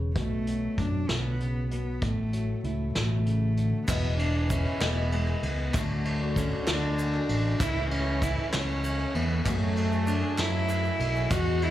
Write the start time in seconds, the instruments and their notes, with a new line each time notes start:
Already playing: fingered electric bass E1, steel-string acoustic guitar C#3 B3 G#4
0.16 fingered electric bass B1, steel-string acoustic guitar B2, cello A3, kick, closed hi-hat
0.47 steel-string acoustic guitar F#3, closed hi-hat
0.78 fingered electric bass F#2, cello D4, kick, closed hi-hat
1.09 fingered electric bass B1, steel-string acoustic guitar D3, cello B3, snare, closed hi-hat
1.40 steel-string acoustic guitar C#3, closed hi-hat
1.71 steel-string acoustic guitar B2, cello B3, closed hi-hat
2.02 fingered electric bass A1, steel-string acoustic guitar A2, cello A3, kick, closed hi-hat
2.33 steel-string acoustic guitar F#3, closed hi-hat
2.64 fingered electric bass C#2, cello A3, steel-string acoustic guitar E4, closed hi-hat
2.95 fingered electric bass A1, steel-string acoustic guitar B2, cello A3, snare, closed hi-hat
3.26 steel-string acoustic guitar C#3, closed hi-hat
3.57 steel-string acoustic guitar D3, closed hi-hat
3.87 fingered electric bass E1, steel-string acoustic guitar E2 B2 E3 G#3 B3 E4, grand piano E2 E3 G#3 B3 E4 B4 E5, french horn E3, cello B3, kick, clap, crash, shaker
4.17 steel-string acoustic guitar E3 G#3 B3 E4, grand piano G#3 B3 E4 B4 E5, cello D4, ride
4.33 steel-string acoustic guitar E3 G#3 B3 E4
4.50 grand piano G#3 B3 E4 B4 E5, cello C#4, kick, ride, shaker
4.65 steel-string acoustic guitar E3 G#3 B3 E4
4.80 fingered electric bass E1, steel-string acoustic guitar E2 B2 E3 G#3 B3 E4, grand piano G#3 B3 E4 B4 E5, cello B3, snare, clap, ride
5.11 steel-string acoustic guitar E3 G#3 B3 E4, grand piano G#3 B3 E4 B4 F#5, cello G#3, ride
5.27 steel-string acoustic guitar E3 G#3 B3 E4, clap
5.43 fingered electric bass C#2, grand piano G#3 B3 E4 B4 E5, cello B3, ride
5.58 steel-string acoustic guitar E3 G#3 B3 E4
5.67 french horn E3
5.74 fingered electric bass D2, grand piano D2 D3 F#3 A3 D4 A4 D5, steel-string acoustic guitar D3 A3 D4 F#4, french horn D3, cello A3, kick, clap, ride, shaker
6.04 steel-string acoustic guitar D3 A3 D4 F#4, grand piano F#3 A3 D4 A4 C#5, ride
6.20 steel-string acoustic guitar A3 D4 F#4
6.36 grand piano F#3 A3 D4 A4 D5, cello C#4, kick, ride, shaker
6.51 steel-string acoustic guitar A3 D4 F#4
6.60 cello C#4
6.67 fingered electric bass D2, steel-string acoustic guitar D3 A3 D4 F#4, grand piano F#3 A3 D4 A4 D5, cello D4, snare, clap, ride
6.98 steel-string acoustic guitar D3 A3 D4 F#4, grand piano F#3 A3 D4 A4 D5, ride, shaker
7.13 steel-string acoustic guitar A3 D4 F#4, clap
7.28 fingered electric bass A1, grand piano F#3 A3 D4 A4 D5, ride
7.45 steel-string acoustic guitar A3 D4 F#4
7.60 grand piano C#2 C#3 A3 C#4 E4 C#5 E5, fingered electric bass C#2, steel-string acoustic guitar C#3 E3 A3 C#4 E4, french horn E3, cello E4, kick, clap, ride, shaker
7.90 steel-string acoustic guitar E3 A3 C#4, grand piano A3 C#4 E4 C#5 F#5, cello C#4, ride
7.94 steel-string acoustic guitar E4
8.06 steel-string acoustic guitar A3 C#4 E4
8.20 grand piano A3 C#4 E4 C#5 F#5, cello E4, kick, ride, shaker
8.36 steel-string acoustic guitar A3 C#4 E4
8.51 fingered electric bass C#2, steel-string acoustic guitar C#3 E3 A3 C#4 E4, grand piano A3 C#4 E4 C#5 E5, cello C#4, snare, clap, ride
8.83 steel-string acoustic guitar E3 A3 C#4 E4, grand piano A3 C#4 E4 C#5 E5, ride, shaker
8.99 steel-string acoustic guitar A3 C#4 E4, clap
9.14 fingered electric bass E2, grand piano A3 C#4 E4 C#5 E5, cello B3, ride
9.29 steel-string acoustic guitar A3 C#4 E4
9.45 grand piano F#1 F#2 A3 C#4 F#4 G#4 C#5, steel-string acoustic guitar F#2 C#3 F#3 A3 C#4 G#4, fingered electric bass F#2, french horn A3, cello A3, kick, clap, ride, shaker
9.52 cello B3
9.58 cello A3
9.75 steel-string acoustic guitar F#3 A3 C#4 G#4, grand piano A3 C#4 F#4 G#4 C#5, clap, ride, shaker
9.91 steel-string acoustic guitar F#3 A3 C#4 G#4, shaker
10.07 grand piano A3 C#4 F#4 G#4 C#5, cello D4, clap, ride, shaker
10.22 steel-string acoustic guitar F#3 A3 C#4 G#4
10.37 steel-string acoustic guitar F#2 C#3 F#3 A3 C#4 G#4, fingered electric bass F#2, grand piano A3 C#4 F#4 G#4 B4, cello E4, snare, clap, ride
10.68 steel-string acoustic guitar F#3 A3 C#4 G#4, grand piano A3 C#4 F#4 G#4 C#5, clap, ride, shaker
10.84 steel-string acoustic guitar F#3 A3 C#4 G#4, shaker
10.99 fingered electric bass B1, grand piano A3 C#4 F#4 G#4 C#5, clap, ride, shaker
11.14 steel-string acoustic guitar F#3 A3 C#4 G#4, shaker
11.29 steel-string acoustic guitar E2 B2 E3 G#3 B3 E4, grand piano E2 E3 G#3 B3 E4 B4 E5, fingered electric bass E2, french horn G#3, cello F#4, kick, clap, ride, shaker
11.60 steel-string acoustic guitar E3 G#3 B3 E4, grand piano G#3 B3 E4 B4 D5, cello E4, ride